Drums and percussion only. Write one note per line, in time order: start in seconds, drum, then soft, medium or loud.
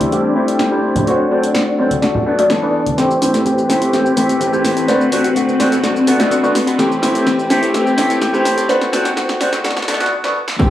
0.00 closed hi-hat medium
0.00 tambourine medium
0.00 high conga medium
0.11 closed hi-hat soft
0.11 tambourine soft
0.35 tambourine medium
0.48 closed hi-hat medium
0.48 tambourine soft
0.59 snare loud
0.59 closed hi-hat soft
0.59 tambourine soft
0.83 tambourine medium
0.96 closed hi-hat medium
0.96 tambourine medium
0.96 high conga medium
0.96 low conga medium
1.07 closed hi-hat soft
1.07 tambourine soft
1.31 tambourine medium
1.43 closed hi-hat medium
1.43 tambourine medium
1.55 snare loud
1.55 closed hi-hat soft
1.55 tambourine soft
1.79 tambourine medium
1.91 closed hi-hat medium
1.91 tambourine medium
1.91 high conga medium
2.02 snare medium
2.02 closed hi-hat soft
2.02 tambourine soft
2.15 low conga medium
2.27 tambourine medium
2.38 closed hi-hat medium
2.38 tambourine soft
2.50 snare loud
2.50 closed hi-hat soft
2.50 tambourine soft
2.74 tambourine medium
2.86 closed hi-hat medium
2.86 tambourine medium
2.86 high conga medium
2.98 snare soft
2.98 closed hi-hat soft
2.98 shaker soft
3.11 shaker soft
3.22 open hi-hat loud
3.22 shaker medium
3.34 snare soft
3.34 closed hi-hat medium
3.34 shaker soft
3.46 closed hi-hat soft
3.46 shaker soft
3.58 shaker soft
3.70 snare soft
3.70 open hi-hat medium
3.70 shaker medium
3.82 closed hi-hat medium
3.82 shaker soft
3.93 snare medium
3.93 closed hi-hat medium
3.93 shaker soft
4.06 shaker soft
4.17 open hi-hat loud
4.17 shaker medium
4.29 closed hi-hat medium
4.29 shaker soft
4.41 closed hi-hat medium
4.41 shaker soft
4.53 shaker soft
4.65 snare medium
4.65 open hi-hat loud
4.65 shaker medium
4.77 closed hi-hat medium
4.77 shaker soft
4.88 snare medium
4.88 closed hi-hat soft
4.88 shaker soft
5.01 shaker soft
5.12 open hi-hat loud
5.12 shaker medium
5.24 closed hi-hat medium
5.24 shaker soft
5.36 closed hi-hat soft
5.36 shaker soft
5.49 shaker soft
5.60 snare medium
5.60 open hi-hat loud
5.60 shaker medium
5.72 closed hi-hat medium
5.72 shaker soft
5.84 snare medium
5.84 closed hi-hat soft
5.84 shaker soft
5.96 shaker soft
6.07 open hi-hat loud
6.07 shaker medium
6.20 snare medium
6.20 closed hi-hat medium
6.20 shaker soft
6.31 closed hi-hat medium
6.31 shaker soft
6.44 shaker soft
6.55 snare medium
6.55 open hi-hat loud
6.55 shaker medium
6.67 closed hi-hat medium
6.67 shaker soft
6.79 snare medium
6.79 closed hi-hat soft
6.79 shaker soft
6.92 shaker soft
7.03 snare medium
7.03 open hi-hat loud
7.03 shaker medium
7.15 closed hi-hat medium
7.15 shaker soft
7.27 snare medium
7.27 closed hi-hat soft
7.27 shaker soft
7.39 shaker soft
7.50 snare medium
7.50 open hi-hat loud
7.50 shaker medium
7.63 closed hi-hat medium
7.63 shaker soft
7.74 snare medium
7.74 closed hi-hat soft
7.74 shaker soft
7.87 shaker soft
7.98 snare medium
7.98 open hi-hat loud
7.98 shaker medium
8.10 closed hi-hat medium
8.10 shaker soft
8.22 snare medium
8.22 closed hi-hat soft
8.22 shaker soft
8.34 shaker soft
8.45 snare medium
8.45 open hi-hat loud
8.45 shaker medium
8.58 closed hi-hat medium
8.58 shaker soft
8.69 snare medium
8.69 closed hi-hat soft
8.69 shaker soft
8.81 snare medium
8.81 shaker soft
8.93 snare medium
8.93 open hi-hat loud
8.93 shaker medium
9.05 snare medium
9.05 closed hi-hat medium
9.05 shaker soft
9.17 snare medium
9.17 closed hi-hat soft
9.17 shaker soft
9.29 snare medium
9.29 shaker soft
9.41 snare loud
9.41 open hi-hat loud
9.41 shaker medium
9.53 snare medium
9.53 closed hi-hat medium
9.53 shaker soft
9.64 snare loud
9.64 closed hi-hat soft
9.64 shaker soft
9.70 snare medium
9.77 snare medium
9.77 shaker soft
9.82 snare medium
9.88 snare loud
9.88 open hi-hat loud
9.88 shaker medium
9.94 snare medium
10.00 snare medium
10.00 closed hi-hat medium
10.00 shaker soft
10.06 snare medium
10.24 snare medium
10.48 snare loud
10.60 kick loud
10.60 closed hi-hat medium
10.60 tambourine soft
10.60 shaker soft